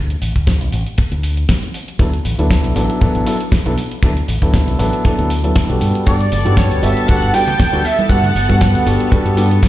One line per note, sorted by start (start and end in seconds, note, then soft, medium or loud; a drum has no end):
0.00 0.15 D2 medium
0.10 closed hi-hat soft
0.22 0.32 A1 medium
0.22 open hi-hat loud
0.36 0.61 D2 medium
0.36 kick medium
0.36 closed hi-hat soft
0.47 kick loud
0.47 snare loud
0.47 closed hi-hat medium
0.61 0.70 B1 medium
0.61 closed hi-hat soft
0.72 0.83 A1 loud
0.72 open hi-hat medium
0.86 closed hi-hat soft
0.98 kick loud
0.98 closed hi-hat medium
1.12 1.44 D2 medium
1.12 closed hi-hat soft
1.23 open hi-hat loud
1.37 closed hi-hat soft
1.49 kick loud
1.49 snare loud
1.49 closed hi-hat medium
1.63 closed hi-hat soft
1.74 open hi-hat medium
1.88 closed hi-hat soft
1.99 2.19 D2 medium
1.99 2.07 F#3 medium
1.99 2.07 B3 medium
1.99 2.07 D4 medium
1.99 2.07 E4 medium
1.99 2.08 A4 medium
1.99 kick loud
1.99 closed hi-hat medium
2.13 closed hi-hat soft
2.25 2.35 A1 medium
2.25 open hi-hat loud
2.38 2.64 D2 medium
2.38 2.73 F#3 medium
2.38 2.73 B3 medium
2.38 2.73 D4 medium
2.38 2.73 E4 medium
2.38 2.74 A4 medium
2.38 closed hi-hat soft
2.51 kick loud
2.51 snare loud
2.51 closed hi-hat medium
2.64 2.73 B1 medium
2.64 closed hi-hat soft
2.75 2.86 A1 loud
2.75 2.98 F#3 medium
2.75 2.99 B3 medium
2.75 2.99 D4 medium
2.75 2.99 E4 medium
2.75 2.99 A4 medium
2.75 open hi-hat medium
2.90 closed hi-hat soft
3.01 3.12 A1 medium
3.01 3.24 F#3 medium
3.01 3.24 B3 medium
3.01 3.24 D4 medium
3.01 3.24 E4 medium
3.01 3.24 A4 loud
3.01 kick loud
3.01 closed hi-hat medium
3.15 3.24 A1 medium
3.15 closed hi-hat soft
3.26 3.34 F#3 medium
3.26 3.34 B3 medium
3.26 3.34 D4 medium
3.26 3.35 E4 medium
3.26 3.35 A4 medium
3.26 open hi-hat loud
3.40 closed hi-hat soft
3.52 kick loud
3.52 snare loud
3.52 closed hi-hat medium
3.65 3.75 B1 medium
3.65 3.72 F#3 medium
3.65 3.72 B3 medium
3.65 3.72 D4 medium
3.65 3.73 E4 medium
3.65 3.73 A4 medium
3.65 closed hi-hat soft
3.78 open hi-hat medium
3.91 closed hi-hat soft
4.03 4.22 D2 medium
4.03 4.10 F#3 medium
4.03 4.11 B3 medium
4.03 4.11 D4 medium
4.03 4.11 E4 medium
4.03 4.11 A4 medium
4.03 kick loud
4.03 closed hi-hat medium
4.17 closed hi-hat soft
4.28 4.39 A1 medium
4.28 open hi-hat loud
4.42 4.68 D2 medium
4.42 4.76 F#3 medium
4.42 4.76 B3 medium
4.42 4.77 D4 medium
4.42 4.77 E4 medium
4.42 4.77 A4 medium
4.42 kick medium
4.42 closed hi-hat soft
4.54 kick loud
4.54 snare loud
4.54 closed hi-hat medium
4.68 4.76 B1 medium
4.68 closed hi-hat soft
4.78 4.90 A1 medium
4.78 5.02 F#3 medium
4.78 5.02 B3 medium
4.78 5.02 D4 medium
4.78 5.02 E4 medium
4.78 5.02 A4 medium
4.78 open hi-hat medium
4.93 closed hi-hat soft
5.04 5.27 F#3 medium
5.04 5.27 B3 medium
5.04 5.27 D4 medium
5.04 5.28 E4 medium
5.04 5.28 A4 loud
5.04 kick loud
5.04 closed hi-hat medium
5.19 5.51 D2 medium
5.19 closed hi-hat soft
5.30 open hi-hat loud
5.44 5.66 F#3 medium
5.44 5.66 B3 medium
5.44 5.66 D4 medium
5.44 5.66 E4 medium
5.44 5.66 A4 medium
5.44 closed hi-hat soft
5.56 kick loud
5.56 snare loud
5.56 closed hi-hat medium
5.69 5.78 B1 medium
5.69 6.03 G3 medium
5.69 6.04 B3 medium
5.69 6.04 D4 medium
5.69 6.04 F#4 medium
5.69 6.04 A4 medium
5.69 closed hi-hat soft
5.81 5.91 G2 medium
5.81 open hi-hat medium
5.95 closed hi-hat soft
6.06 6.26 G2 medium
6.06 6.14 G3 medium
6.06 6.14 B3 medium
6.06 9.69 B3 medium
6.06 6.14 D4 medium
6.06 6.14 F#4 medium
6.06 9.69 A4 medium
6.06 6.14 A4 medium
6.06 6.57 D5 medium
6.06 9.69 A5 medium
6.06 kick loud
6.06 closed hi-hat medium
6.21 closed hi-hat soft
6.32 6.42 G1 medium
6.32 open hi-hat loud
6.32 low conga medium
6.45 6.71 G2 medium
6.45 6.80 G3 medium
6.45 6.80 B3 medium
6.45 6.80 D4 medium
6.45 6.80 F#4 medium
6.45 6.80 A4 medium
6.45 closed hi-hat soft
6.45 high conga medium
6.57 6.84 C#5 medium
6.57 kick loud
6.57 snare loud
6.57 closed hi-hat medium
6.71 6.80 D2 medium
6.71 closed hi-hat soft
6.82 6.93 G1 medium
6.82 7.05 G3 medium
6.82 7.05 B3 medium
6.82 7.06 D4 medium
6.82 7.06 F#4 medium
6.82 7.06 A4 medium
6.82 7.09 E5 loud
6.82 open hi-hat medium
6.97 closed hi-hat soft
7.08 7.19 D2 medium
7.08 7.31 G3 medium
7.08 7.31 B3 medium
7.08 7.31 D4 medium
7.08 7.31 F#4 medium
7.08 7.31 A4 loud
7.08 7.35 F#5 loud
7.08 kick loud
7.08 closed hi-hat medium
7.22 7.31 G1 medium
7.22 closed hi-hat soft
7.33 7.41 G3 medium
7.33 7.41 B3 medium
7.33 7.41 D4 medium
7.33 7.42 F#4 medium
7.33 7.42 A4 medium
7.33 7.86 G5 loud
7.33 open hi-hat loud
7.47 closed hi-hat soft
7.47 low conga medium
7.60 kick loud
7.60 snare loud
7.60 closed hi-hat medium
7.72 7.82 D2 medium
7.72 7.79 G3 medium
7.72 7.79 B3 medium
7.72 7.79 D4 medium
7.72 7.79 F#4 medium
7.72 7.80 A4 medium
7.72 closed hi-hat soft
7.84 8.09 E5 loud
7.84 open hi-hat medium
7.99 closed hi-hat soft
7.99 high conga medium
8.09 8.29 G2 medium
8.09 8.17 G3 medium
8.09 8.17 B3 medium
8.09 8.18 D4 medium
8.09 8.18 F#4 medium
8.09 8.18 A4 medium
8.09 9.07 F#5 loud
8.09 kick loud
8.09 closed hi-hat medium
8.23 closed hi-hat soft
8.23 low conga medium
8.35 8.46 G1 medium
8.35 open hi-hat loud
8.35 low conga medium
8.49 8.75 G2 medium
8.49 8.83 G3 medium
8.49 8.83 B3 medium
8.49 8.83 D4 medium
8.49 8.84 F#4 medium
8.49 8.84 A4 medium
8.49 kick medium
8.49 closed hi-hat soft
8.49 high conga medium
8.61 kick loud
8.61 snare loud
8.61 closed hi-hat medium
8.75 8.83 D2 medium
8.75 closed hi-hat soft
8.86 8.96 G1 medium
8.86 9.09 G3 medium
8.86 9.09 B3 medium
8.86 9.09 D4 medium
8.86 9.09 F#4 medium
8.86 9.09 A4 medium
8.86 open hi-hat medium
9.00 closed hi-hat soft
9.11 9.34 G3 medium
9.11 9.34 B3 medium
9.11 9.34 D4 medium
9.11 9.34 F#4 medium
9.11 9.35 A4 loud
9.11 kick loud
9.11 closed hi-hat medium
9.26 9.58 G2 medium
9.26 closed hi-hat soft
9.37 9.44 G3 medium
9.37 9.44 B3 medium
9.37 9.45 D4 medium
9.37 9.45 F#4 medium
9.37 9.45 A4 medium
9.37 open hi-hat loud
9.51 closed hi-hat soft
9.63 kick loud
9.63 snare loud
9.63 closed hi-hat medium